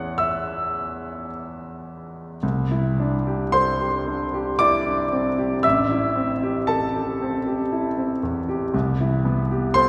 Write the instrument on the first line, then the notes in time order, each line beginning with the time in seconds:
grand piano
Already playing: E2 B3 C#4 E4 G#4 F#5 F#6
0.18 E5 E6
2.43 C2
2.71 E4
3.00 D4
3.27 G4
3.52 A4 C5 C6
3.81 G4
4.08 D4
4.34 G4
4.59 E4 D5 D6
4.86 D4
5.13 C4
5.39 G4
5.63 A1 E5 E6
5.91 E4
6.16 C4
6.43 G4
6.67 A4 A5
6.96 G4
7.22 C4
7.46 G4
7.72 E4
7.97 C4
8.23 E2
8.49 G4
8.74 C2
9.01 E4
9.25 B3
9.51 G4
9.74 A4 C5 C6